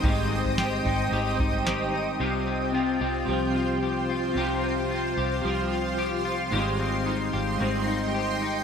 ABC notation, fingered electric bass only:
X:1
M:4/4
L:1/8
Q:1/4=111
K:Cphr
V:1 name="Fingered electric bass" clef=bass
A,,,3 A,,, A,,,4 | C,,3 C,, C,,4 | C,,3 C,, C,,4 | A,,,3 A,,, A,,,4 |]